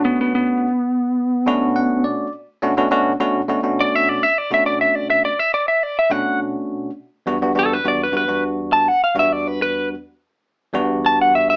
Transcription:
<<
  \new Staff \with { instrumentName = "Lead electric guitar" } { \time 4/4 \key b \minor \tempo 4 = 104 b16 b16 b2. r8 | r2 r8 d''16 e''16 d''16 e''16 d''16 e''16 | d''16 e''16 d''16 e''16 d''16 e''16 d''16 e''16 d''16 e''16 fis''8 r4 | r4 a'16 b'16 d''16 b'16 b'8 r8 a''16 fis''16 eis''16 e''16 |
d''16 b'16 b'8 r2 a''16 fis''16 e''16 e''16 | }
  \new Staff \with { instrumentName = "Tine electric piano" } { \time 4/4 \key b \minor << { r2. fis''8 d''8 | r1 | r1 | r1 |
r1 | } \\ { <b, a cis' d' fis'>4 r4. <b, a cis' d' fis'>4~ <b, a cis' d' fis'>16 r16 | r8 <b, a cis' d' fis'>16 <b, a cis' d' fis'>16 <b, a cis' d' fis'>16 r16 <b, a cis' d' fis'>16 r16 <b, a cis' d' fis'>16 <b, a cis' d' fis'>4 r8 <b, a cis' d' fis'>16~ | <b, a cis' d' fis'>4 r4. <b, a cis' d' fis'>4~ <b, a cis' d' fis'>16 r16 | r8 <e, g b d' fis'>16 <e, g b d' fis'>16 <e, g b d' fis'>16 r16 <e, g b d' fis'>16 r16 <e, g b d' fis'>16 <e, g b d' fis'>4 r8 <e, g b d' fis'>16~ |
<e, g b d' fis'>4 r4. <e, g b d' fis'>4~ <e, g b d' fis'>16 r16 | } >> }
>>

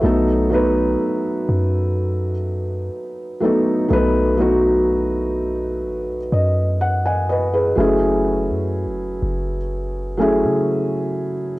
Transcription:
<<
  \new Staff \with { instrumentName = "Felt piano" } { \time 4/4 \key b \mixolydian \tempo 4 = 62 <cis'' e''>16 r2. r8. | r2 r8 dis''8 fis''16 <dis'' fis'' gis''>16 <b' dis''>16 <gis' b'>16~ | <gis' b'>16 r2. r8. | }
  \new Staff \with { instrumentName = "Felt piano" } { \time 4/4 \key b \mixolydian <fis a b dis' a'>8 <fis a b dis' b'>2 r4 <fis a b dis' a'>8 | <fis a b dis' b'>8 <fis a b dis' fis'>2 r4. | <fis a cis' e' gis'>2 r8 <fis a cis' e' gis'>4. | }
  \new Staff \with { instrumentName = "808-style bass" } { \clef bass \time 4/4 \key b \mixolydian b,,4 r8 fis,4. r4 | b,,2 a,,16 b,,16 fis,4. | fis,,8. fis,16. fis,,16. fis,,4~ fis,,16 cis4~ cis16 | }
>>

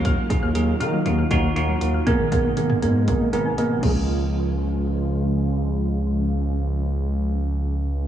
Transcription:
<<
  \new Staff \with { instrumentName = "Tine electric piano" } { \time 4/4 \key des \mixolydian \tempo 4 = 119 << { r1 | r2 r8 bes''16 aes''16 ees''8 r8 | r1 | r1 | } \\ { <ees' f' ges'>8 <ees' f' aes'>8 <ees' f' aes'>8 <ees' f' ges'>8 <ees' f' ges'>8 <ees' f' ges'>8 <ees' f' ges'>8 <ees' f' ges'>8 | <ces' aes' bes'>8 <ces' aes' bes'>8 <ces' aes' bes'>8 <ces' aes' bes'>8 <ces' aes' bes'>8 <ces' aes' bes'>8 <ces' aes' bes'>8 <des' f' aes'>8~ | <des' f' aes'>1~ | <des' f' aes'>1 | } >> }
  \new Staff \with { instrumentName = "Synth pluck" } { \time 4/4 \key des \mixolydian f'''16 r8 f'''16 ges16 ees16 f'''16 ges16 ees16 f'''16 ges16 ees16 r16 ges16 ees16 f'''16 | bes16 ees16 aes'''16 bes16 ees16 aes'''16 bes16 r8 bes16 ees16 aes'''16 bes16 ees16 <f aes des' aes'>8~ | <f aes des' aes'>1~ | <f aes des' aes'>1 | }
  \new Staff \with { instrumentName = "String machine" } { \clef bass \time 4/4 \key des \mixolydian << { <ees ges f''>1 | <ces aes ees'>2.~ <ces aes ees'>8 <des f aes f'>8~ | <des f aes f'>1~ | <des f aes f'>1 | } \\ { bes1~ | bes2.~ bes8 r8 | r1 | r1 | } >> }
  \new Staff \with { instrumentName = "Analog synth bass" } { \clef bass \time 4/4 \key des \mixolydian ees,8 r16 ees,16 ees,8 ees8 ees,8 ees,8 ees,8 ees,8 | aes,,8 r16 aes,,16 aes,,8 aes,8 aes,,8 aes,,8 aes,,8 des,8~ | des,1~ | des,1 | }
  \new DrumStaff \with { instrumentName = "Drums" } \drummode { \time 4/4 <hh bd>8 <hh bd>8 hh8 hh8 hh8 <hh bd>8 hh8 hh8 | <hh bd>8 <hh bd>8 hh16 toml16 hh8 <hh bd>8 hh8 hh8 <cymc bd>8 | r4 r4 r4 r4 | r4 r4 r4 r4 | }
>>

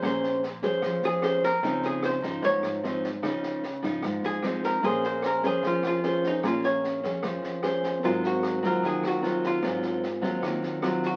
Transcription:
<<
  \new Staff \with { instrumentName = "Tine electric piano" } { \time 4/4 \key bes \minor \tempo 4 = 150 r1 | r1 | r1 | <des' bes' aes'' c'''>1~ |
<des' bes' aes'' c'''>1 | <c' bes' f''>1~ | <c' bes' f''>1 | }
  \new Staff \with { instrumentName = "Hollow-body jazz guitar" } { \time 4/4 \key bes \minor c''2~ c''8 aes'4 bes'8~ | bes'8 aes'8 c''4 des''2~ | des''2~ des''8 aes'4 bes'8 | aes'8 c''8 bes'8 aes'8 f'8 f'4 ees'8 |
f'8 des''2. r8 | f'8 ges'4 bes'8 aes'8 ges'4 f'8~ | f'2~ f'8 r4 ges'8 | }
  \new Staff \with { instrumentName = "Nylon-string guitar" } { \time 4/4 \key bes \minor << { <des' aes' c''>4 r8 <des' aes' c''>4. <des' aes' c''>8 r8 | <f c' ees'>4. <f ees'>4. <f c' ees'>8 r8 | <f ees'>4 r8 <f ees'>4. <f c' ees'>4 | <des' aes' c''>4. <des' aes' c''>4. <des' aes' c''>4 |
<des' aes'>4. <des' aes'>4. <des' aes' c''>4 | <ges c'>4. <ges c' f'>4. <ges c' f'>4 | <ges c' f'>4 r8 <ges c' f'>4. <ges c' f'>4 | } \\ { bes2 f2 | des2 aes,2 | des2 aes,2 | bes2 f2 |
bes2 f2 | aes,2 ees2 | aes,2 ees2 | } >> }
  \new Staff \with { instrumentName = "Upright bass" } { \clef bass \time 4/4 \key bes \minor bes,,4. f,8 f,8 f,4. | des,4. aes,,8 aes,,8 aes,,4. | des,4. aes,,8 aes,,8 aes,,4. | bes,,4. f,8 f,8 f,4. |
bes,,4. f,8 f,8 f,4. | aes,,4. ees,8 ees,8 ees,4. | aes,,4. ees,8 ees,8 ees,4. | }
  \new DrumStaff \with { instrumentName = "Drums" } \drummode { \time 4/4 <bd ss sn>8 sn8 sn8 <bd sn>8 <bd ss sn>8 sn8 <ss sn>8 <bd sn>8 | <bd sn>8 sn8 <ss sn>8 <bd sn>8 <bd sn>8 <ss sn>8 sn8 <bd sn>8 | <bd ss sn>8 sn8 sn8 <bd sn>8 <bd ss sn>8 sn8 <ss sn>8 <bd sn>8 | <bd sn>8 sn8 <ss sn>8 <bd sn>8 <bd sn>8 <ss sn>8 sn8 <bd sn>8 |
<bd ss sn>8 sn8 sn8 <bd sn>8 <bd ss sn>8 sn8 <ss sn>8 <bd sn>8 | <bd sn>8 sn8 <ss sn>8 <bd sn>8 <bd sn>8 <ss sn>8 sn8 <bd sn>8 | <bd ss sn>8 sn8 sn8 <bd sn>8 <bd ss sn>8 sn8 <ss sn>8 <bd sn>8 | }
>>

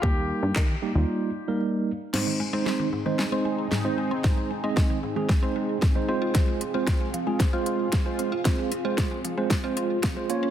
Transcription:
<<
  \new Staff \with { instrumentName = "Grand piano" } { \time 4/4 \key aes \major \tempo 4 = 114 g'2. r4 | r1 | r1 | r1 |
r1 | }
  \new Staff \with { instrumentName = "Analog synth pad" } { \time 4/4 \key aes \major << { r1 | <c' aes'>1~ | <c' aes'>1~ | <c' aes'>1~ |
<c' aes'>2.~ <c' aes'>8 <des' bes'>8 | } \\ { r1 | ees'1~ | ees'2.~ ees'8 f'8~ | f'1~ |
f'1 | } >> }
  \new Staff \with { instrumentName = "Tine electric piano" } { \time 4/4 \key aes \major <g bes ees' bes'>4 r8 <g bes ees' g'>16 <g bes ees' f'>8. r16 <g bes ees' bes'>8. r8 | <aes c' ees' c''>8 r16 <aes c' ees' c''>8. r16 <aes c' ees' c''>16 r16 <aes c' ees' c''>8. r16 <aes c' ees' c''>8 r16 | <aes c' ees' c''>8 r16 <aes c' ees' ees''>8. r16 <aes c' ees' aes'>16 r16 <aes c' ees' c''>8. r16 <aes c' ees' c''>16 <aes c' f' c''>8~ | <aes c' f' c''>8 r16 <aes c' f' c''>8. r16 <aes c' f' aes'>16 r16 <aes c' f' c''>8. r16 <aes c' f' c''>8 r16 |
<aes c' f' c''>8 r16 <aes c' f' c''>8. r16 <aes c' f' c''>16 r16 <aes c' f' c''>8. r16 <aes c' f' c''>16 <bes des' f' des''>8 | }
  \new Staff \with { instrumentName = "Synth arpeggio sound" } { \clef bass \time 4/4 \key aes \major r1 | aes,16 ees16 aes16 c'16 aes16 ees16 aes,16 ees16 aes16 c'16 aes16 r16 aes,16 ees16 aes16 c'16 | aes,16 ees16 aes16 c'16 aes16 ees16 aes,16 ees16 aes16 c'16 aes16 r16 aes,16 ees16 c'16 f'16 | f16 aes16 c'16 f'16 c'16 aes16 f16 aes16 c'16 f'16 c'16 r16 f16 aes16 c'16 f'16 |
f16 aes16 c'16 f'16 c'16 aes16 f16 aes16 c'16 f'16 c'16 r16 f16 aes16 bes16 des'16 | }
  \new Staff \with { instrumentName = "Analog synth bass" } { \clef bass \time 4/4 \key aes \major ees,8. g,16 ees8 r16 ees,16 r2 | r1 | r1 | r1 |
r1 | }
  \new DrumStaff \with { instrumentName = "Drums" } \drummode { \time 4/4 bd4 <hc bd sn>4 r4 r4 | <cymc sn>4 sn4 sn4 sn4 | <bd sn>4 <bd sn>4 <bd sn>4 <bd sn>4 | <hh bd sn>8 hh8 <hh bd sn>8 hh8 <hh bd sn>8 hh8 <hh bd sn>8 hh8 |
<hh bd sn>8 hh8 <hh bd sn>8 hh8 <hh bd sn>8 hh8 <hh bd sn>8 hh8 | }
>>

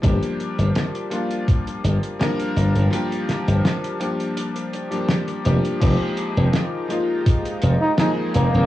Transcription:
<<
  \new Staff \with { instrumentName = "String machine" } { \time 4/4 \key f \dorian \tempo 4 = 83 r1 | r1 | <aes ees'' g'' bes''>1 | }
  \new Staff \with { instrumentName = "Flugelhorn" } { \time 4/4 \key f \dorian r1 | r1 | r2 r8. ees'16 ees'16 r16 bes8 | }
  \new Staff \with { instrumentName = "Electric grand piano" } { \time 4/4 \key f \dorian <f g bes d' g'>4. <f g bes d' f'>4. <f g bes d' bes'>16 r8. | <f g bes d' g'>4. <f g bes d' g'>4 r16 <f g bes d' g'>8. <f g bes d' g'>8 | <f aes bes ees' g'>4. <f aes bes ees' f'>4. <f aes bes ees' aes'>16 r8. | }
  \new Staff \with { instrumentName = "Slap bass" } { \clef bass \time 4/4 \key f \dorian g,,16 r8 g,,16 r4. g,,16 r8. g,,16 g,,16 | r8. g,,16 r2 r8 f,,16 r16 | f,,16 r8 f,,16 r4. f,,16 r8. f,,16 f,,16 | }
  \new DrumStaff \with { instrumentName = "Drums" } \drummode { \time 4/4 <hh bd>16 hh16 hh16 hh16 <hh sn>16 hh16 hh16 hh16 <hh bd>16 hh16 hh16 hh16 <hh sn>16 hh16 hh16 hh16 | hh16 hh16 <hh sn>16 hh16 <hh sn>16 hh16 hh16 hh16 hh16 hh16 hh16 hh16 <hh sn>16 hh16 hh16 hh16 | <cymc hh bd>8 hh8 <hh sn>8 hh8 <hh bd>16 hh16 hh8 <hh sn>8 hh8 | }
>>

